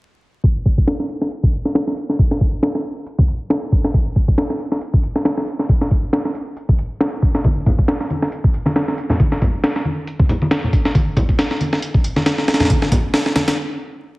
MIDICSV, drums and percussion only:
0, 0, Header, 1, 2, 480
1, 0, Start_track
1, 0, Tempo, 437956
1, 479, Time_signature, 4, 2, 24, 8
1, 15548, End_track
2, 0, Start_track
2, 0, Title_t, "Drums"
2, 478, Note_on_c, 9, 36, 92
2, 479, Note_on_c, 9, 42, 80
2, 588, Note_off_c, 9, 36, 0
2, 588, Note_off_c, 9, 42, 0
2, 719, Note_on_c, 9, 36, 81
2, 720, Note_on_c, 9, 42, 60
2, 828, Note_off_c, 9, 36, 0
2, 829, Note_off_c, 9, 42, 0
2, 852, Note_on_c, 9, 36, 83
2, 958, Note_on_c, 9, 38, 100
2, 958, Note_on_c, 9, 42, 77
2, 962, Note_off_c, 9, 36, 0
2, 1067, Note_off_c, 9, 38, 0
2, 1067, Note_off_c, 9, 42, 0
2, 1093, Note_on_c, 9, 38, 47
2, 1198, Note_on_c, 9, 42, 59
2, 1202, Note_off_c, 9, 38, 0
2, 1308, Note_off_c, 9, 42, 0
2, 1331, Note_on_c, 9, 38, 50
2, 1438, Note_on_c, 9, 42, 79
2, 1441, Note_off_c, 9, 38, 0
2, 1547, Note_off_c, 9, 42, 0
2, 1572, Note_on_c, 9, 36, 87
2, 1680, Note_on_c, 9, 42, 61
2, 1682, Note_off_c, 9, 36, 0
2, 1789, Note_off_c, 9, 42, 0
2, 1812, Note_on_c, 9, 38, 42
2, 1919, Note_off_c, 9, 38, 0
2, 1919, Note_on_c, 9, 38, 99
2, 1919, Note_on_c, 9, 42, 77
2, 2028, Note_off_c, 9, 38, 0
2, 2028, Note_off_c, 9, 42, 0
2, 2053, Note_on_c, 9, 38, 51
2, 2161, Note_on_c, 9, 42, 60
2, 2163, Note_off_c, 9, 38, 0
2, 2271, Note_off_c, 9, 42, 0
2, 2295, Note_on_c, 9, 38, 38
2, 2400, Note_on_c, 9, 36, 98
2, 2400, Note_on_c, 9, 42, 78
2, 2405, Note_off_c, 9, 38, 0
2, 2510, Note_off_c, 9, 36, 0
2, 2510, Note_off_c, 9, 42, 0
2, 2533, Note_on_c, 9, 38, 47
2, 2639, Note_on_c, 9, 36, 79
2, 2639, Note_on_c, 9, 42, 60
2, 2642, Note_off_c, 9, 38, 0
2, 2749, Note_off_c, 9, 36, 0
2, 2749, Note_off_c, 9, 42, 0
2, 2878, Note_on_c, 9, 38, 103
2, 2878, Note_on_c, 9, 46, 72
2, 2988, Note_off_c, 9, 38, 0
2, 2988, Note_off_c, 9, 46, 0
2, 3013, Note_on_c, 9, 38, 45
2, 3122, Note_off_c, 9, 38, 0
2, 3359, Note_on_c, 9, 42, 79
2, 3469, Note_off_c, 9, 42, 0
2, 3492, Note_on_c, 9, 36, 89
2, 3598, Note_on_c, 9, 42, 62
2, 3602, Note_off_c, 9, 36, 0
2, 3707, Note_off_c, 9, 42, 0
2, 3837, Note_on_c, 9, 38, 98
2, 3837, Note_on_c, 9, 42, 80
2, 3947, Note_off_c, 9, 38, 0
2, 3947, Note_off_c, 9, 42, 0
2, 4078, Note_on_c, 9, 42, 60
2, 4079, Note_on_c, 9, 36, 83
2, 4188, Note_off_c, 9, 36, 0
2, 4188, Note_off_c, 9, 42, 0
2, 4212, Note_on_c, 9, 38, 50
2, 4318, Note_on_c, 9, 36, 98
2, 4318, Note_on_c, 9, 42, 79
2, 4322, Note_off_c, 9, 38, 0
2, 4428, Note_off_c, 9, 36, 0
2, 4428, Note_off_c, 9, 42, 0
2, 4557, Note_on_c, 9, 42, 59
2, 4558, Note_on_c, 9, 36, 81
2, 4667, Note_off_c, 9, 42, 0
2, 4668, Note_off_c, 9, 36, 0
2, 4692, Note_on_c, 9, 36, 80
2, 4798, Note_on_c, 9, 38, 105
2, 4798, Note_on_c, 9, 42, 81
2, 4801, Note_off_c, 9, 36, 0
2, 4907, Note_off_c, 9, 38, 0
2, 4907, Note_off_c, 9, 42, 0
2, 4931, Note_on_c, 9, 38, 46
2, 5039, Note_on_c, 9, 42, 59
2, 5041, Note_off_c, 9, 38, 0
2, 5148, Note_off_c, 9, 42, 0
2, 5170, Note_on_c, 9, 38, 49
2, 5276, Note_on_c, 9, 42, 80
2, 5280, Note_off_c, 9, 38, 0
2, 5386, Note_off_c, 9, 42, 0
2, 5411, Note_on_c, 9, 36, 87
2, 5516, Note_on_c, 9, 42, 62
2, 5520, Note_off_c, 9, 36, 0
2, 5626, Note_off_c, 9, 42, 0
2, 5651, Note_on_c, 9, 38, 44
2, 5756, Note_off_c, 9, 38, 0
2, 5756, Note_on_c, 9, 38, 103
2, 5756, Note_on_c, 9, 42, 81
2, 5866, Note_off_c, 9, 38, 0
2, 5866, Note_off_c, 9, 42, 0
2, 5890, Note_on_c, 9, 38, 52
2, 5996, Note_on_c, 9, 42, 62
2, 5999, Note_off_c, 9, 38, 0
2, 6105, Note_off_c, 9, 42, 0
2, 6130, Note_on_c, 9, 38, 38
2, 6236, Note_on_c, 9, 42, 76
2, 6238, Note_on_c, 9, 36, 96
2, 6240, Note_off_c, 9, 38, 0
2, 6346, Note_off_c, 9, 42, 0
2, 6347, Note_off_c, 9, 36, 0
2, 6371, Note_on_c, 9, 38, 46
2, 6477, Note_on_c, 9, 42, 62
2, 6478, Note_on_c, 9, 36, 84
2, 6480, Note_off_c, 9, 38, 0
2, 6587, Note_off_c, 9, 36, 0
2, 6587, Note_off_c, 9, 42, 0
2, 6717, Note_on_c, 9, 38, 102
2, 6717, Note_on_c, 9, 46, 71
2, 6827, Note_off_c, 9, 38, 0
2, 6827, Note_off_c, 9, 46, 0
2, 6852, Note_on_c, 9, 38, 45
2, 6958, Note_on_c, 9, 42, 63
2, 6961, Note_off_c, 9, 38, 0
2, 7068, Note_off_c, 9, 42, 0
2, 7198, Note_on_c, 9, 42, 82
2, 7307, Note_off_c, 9, 42, 0
2, 7331, Note_on_c, 9, 36, 86
2, 7438, Note_on_c, 9, 42, 62
2, 7441, Note_off_c, 9, 36, 0
2, 7548, Note_off_c, 9, 42, 0
2, 7678, Note_on_c, 9, 38, 104
2, 7678, Note_on_c, 9, 42, 77
2, 7788, Note_off_c, 9, 38, 0
2, 7788, Note_off_c, 9, 42, 0
2, 7918, Note_on_c, 9, 36, 89
2, 7918, Note_on_c, 9, 42, 61
2, 8028, Note_off_c, 9, 36, 0
2, 8028, Note_off_c, 9, 42, 0
2, 8051, Note_on_c, 9, 38, 51
2, 8158, Note_on_c, 9, 36, 97
2, 8158, Note_on_c, 9, 42, 79
2, 8161, Note_off_c, 9, 38, 0
2, 8161, Note_on_c, 9, 63, 91
2, 8267, Note_off_c, 9, 42, 0
2, 8268, Note_off_c, 9, 36, 0
2, 8271, Note_off_c, 9, 63, 0
2, 8398, Note_on_c, 9, 42, 61
2, 8398, Note_on_c, 9, 64, 74
2, 8399, Note_on_c, 9, 36, 82
2, 8508, Note_off_c, 9, 36, 0
2, 8508, Note_off_c, 9, 42, 0
2, 8508, Note_off_c, 9, 64, 0
2, 8532, Note_on_c, 9, 36, 82
2, 8637, Note_on_c, 9, 38, 106
2, 8637, Note_on_c, 9, 42, 76
2, 8641, Note_off_c, 9, 36, 0
2, 8747, Note_off_c, 9, 38, 0
2, 8747, Note_off_c, 9, 42, 0
2, 8773, Note_on_c, 9, 38, 47
2, 8880, Note_on_c, 9, 42, 62
2, 8880, Note_on_c, 9, 63, 58
2, 8882, Note_off_c, 9, 38, 0
2, 8989, Note_off_c, 9, 42, 0
2, 8990, Note_off_c, 9, 63, 0
2, 9013, Note_on_c, 9, 38, 48
2, 9119, Note_on_c, 9, 42, 81
2, 9122, Note_off_c, 9, 38, 0
2, 9229, Note_off_c, 9, 42, 0
2, 9253, Note_on_c, 9, 36, 89
2, 9360, Note_on_c, 9, 42, 65
2, 9362, Note_off_c, 9, 36, 0
2, 9470, Note_off_c, 9, 42, 0
2, 9488, Note_on_c, 9, 63, 85
2, 9494, Note_on_c, 9, 38, 43
2, 9597, Note_off_c, 9, 63, 0
2, 9600, Note_off_c, 9, 38, 0
2, 9600, Note_on_c, 9, 38, 106
2, 9600, Note_on_c, 9, 42, 78
2, 9709, Note_off_c, 9, 38, 0
2, 9709, Note_off_c, 9, 42, 0
2, 9734, Note_on_c, 9, 38, 52
2, 9842, Note_on_c, 9, 42, 61
2, 9844, Note_off_c, 9, 38, 0
2, 9951, Note_off_c, 9, 42, 0
2, 9969, Note_on_c, 9, 64, 86
2, 9974, Note_on_c, 9, 38, 39
2, 10079, Note_off_c, 9, 64, 0
2, 10080, Note_on_c, 9, 36, 99
2, 10080, Note_on_c, 9, 42, 81
2, 10081, Note_on_c, 9, 63, 75
2, 10083, Note_off_c, 9, 38, 0
2, 10190, Note_off_c, 9, 36, 0
2, 10190, Note_off_c, 9, 42, 0
2, 10191, Note_off_c, 9, 63, 0
2, 10213, Note_on_c, 9, 38, 44
2, 10320, Note_on_c, 9, 36, 86
2, 10321, Note_on_c, 9, 42, 61
2, 10321, Note_on_c, 9, 64, 76
2, 10323, Note_off_c, 9, 38, 0
2, 10430, Note_off_c, 9, 36, 0
2, 10430, Note_off_c, 9, 64, 0
2, 10431, Note_off_c, 9, 42, 0
2, 10561, Note_on_c, 9, 38, 102
2, 10561, Note_on_c, 9, 46, 74
2, 10670, Note_off_c, 9, 38, 0
2, 10670, Note_off_c, 9, 46, 0
2, 10695, Note_on_c, 9, 38, 48
2, 10796, Note_on_c, 9, 63, 56
2, 10805, Note_off_c, 9, 38, 0
2, 10905, Note_off_c, 9, 63, 0
2, 11042, Note_on_c, 9, 42, 80
2, 11151, Note_off_c, 9, 42, 0
2, 11174, Note_on_c, 9, 36, 91
2, 11281, Note_on_c, 9, 64, 74
2, 11282, Note_on_c, 9, 42, 63
2, 11284, Note_off_c, 9, 36, 0
2, 11391, Note_off_c, 9, 64, 0
2, 11392, Note_off_c, 9, 42, 0
2, 11418, Note_on_c, 9, 63, 84
2, 11520, Note_on_c, 9, 38, 104
2, 11520, Note_on_c, 9, 42, 81
2, 11528, Note_off_c, 9, 63, 0
2, 11630, Note_off_c, 9, 38, 0
2, 11630, Note_off_c, 9, 42, 0
2, 11662, Note_on_c, 9, 64, 65
2, 11760, Note_on_c, 9, 36, 84
2, 11761, Note_on_c, 9, 42, 64
2, 11771, Note_off_c, 9, 64, 0
2, 11870, Note_off_c, 9, 36, 0
2, 11870, Note_off_c, 9, 42, 0
2, 11895, Note_on_c, 9, 38, 51
2, 12000, Note_on_c, 9, 36, 104
2, 12001, Note_on_c, 9, 42, 81
2, 12001, Note_on_c, 9, 63, 82
2, 12004, Note_off_c, 9, 38, 0
2, 12110, Note_off_c, 9, 36, 0
2, 12110, Note_off_c, 9, 63, 0
2, 12111, Note_off_c, 9, 42, 0
2, 12237, Note_on_c, 9, 64, 91
2, 12239, Note_on_c, 9, 36, 86
2, 12239, Note_on_c, 9, 42, 61
2, 12347, Note_off_c, 9, 64, 0
2, 12349, Note_off_c, 9, 36, 0
2, 12349, Note_off_c, 9, 42, 0
2, 12372, Note_on_c, 9, 36, 81
2, 12480, Note_on_c, 9, 38, 105
2, 12480, Note_on_c, 9, 42, 80
2, 12482, Note_off_c, 9, 36, 0
2, 12589, Note_off_c, 9, 38, 0
2, 12589, Note_off_c, 9, 42, 0
2, 12613, Note_on_c, 9, 38, 48
2, 12720, Note_on_c, 9, 63, 55
2, 12721, Note_on_c, 9, 42, 65
2, 12723, Note_off_c, 9, 38, 0
2, 12829, Note_off_c, 9, 63, 0
2, 12830, Note_off_c, 9, 42, 0
2, 12853, Note_on_c, 9, 38, 51
2, 12960, Note_on_c, 9, 42, 85
2, 12963, Note_off_c, 9, 38, 0
2, 13069, Note_off_c, 9, 42, 0
2, 13091, Note_on_c, 9, 36, 91
2, 13199, Note_on_c, 9, 42, 66
2, 13201, Note_off_c, 9, 36, 0
2, 13309, Note_off_c, 9, 42, 0
2, 13331, Note_on_c, 9, 63, 79
2, 13333, Note_on_c, 9, 38, 44
2, 13439, Note_off_c, 9, 38, 0
2, 13439, Note_on_c, 9, 38, 107
2, 13439, Note_on_c, 9, 42, 84
2, 13440, Note_off_c, 9, 63, 0
2, 13548, Note_off_c, 9, 38, 0
2, 13548, Note_off_c, 9, 42, 0
2, 13572, Note_on_c, 9, 38, 54
2, 13679, Note_off_c, 9, 38, 0
2, 13679, Note_on_c, 9, 38, 82
2, 13679, Note_on_c, 9, 42, 62
2, 13745, Note_off_c, 9, 38, 0
2, 13745, Note_off_c, 9, 42, 0
2, 13745, Note_on_c, 9, 38, 79
2, 13745, Note_on_c, 9, 42, 61
2, 13811, Note_on_c, 9, 64, 81
2, 13813, Note_off_c, 9, 38, 0
2, 13813, Note_off_c, 9, 42, 0
2, 13813, Note_on_c, 9, 38, 83
2, 13813, Note_on_c, 9, 42, 60
2, 13866, Note_off_c, 9, 38, 0
2, 13866, Note_off_c, 9, 42, 0
2, 13866, Note_on_c, 9, 38, 81
2, 13866, Note_on_c, 9, 42, 64
2, 13917, Note_on_c, 9, 36, 101
2, 13918, Note_off_c, 9, 42, 0
2, 13918, Note_on_c, 9, 42, 85
2, 13920, Note_off_c, 9, 64, 0
2, 13929, Note_on_c, 9, 63, 83
2, 13975, Note_off_c, 9, 38, 0
2, 14027, Note_off_c, 9, 36, 0
2, 14028, Note_off_c, 9, 42, 0
2, 14038, Note_off_c, 9, 63, 0
2, 14052, Note_on_c, 9, 38, 48
2, 14157, Note_on_c, 9, 36, 86
2, 14157, Note_on_c, 9, 64, 89
2, 14158, Note_on_c, 9, 42, 63
2, 14161, Note_off_c, 9, 38, 0
2, 14267, Note_off_c, 9, 36, 0
2, 14267, Note_off_c, 9, 42, 0
2, 14267, Note_off_c, 9, 64, 0
2, 14398, Note_on_c, 9, 38, 109
2, 14398, Note_on_c, 9, 46, 74
2, 14507, Note_off_c, 9, 38, 0
2, 14507, Note_off_c, 9, 46, 0
2, 14532, Note_on_c, 9, 38, 51
2, 14638, Note_off_c, 9, 38, 0
2, 14638, Note_on_c, 9, 38, 97
2, 14638, Note_on_c, 9, 42, 74
2, 14638, Note_on_c, 9, 63, 60
2, 14748, Note_off_c, 9, 38, 0
2, 14748, Note_off_c, 9, 42, 0
2, 14748, Note_off_c, 9, 63, 0
2, 14771, Note_on_c, 9, 38, 98
2, 14771, Note_on_c, 9, 42, 73
2, 14881, Note_off_c, 9, 38, 0
2, 14881, Note_off_c, 9, 42, 0
2, 15548, End_track
0, 0, End_of_file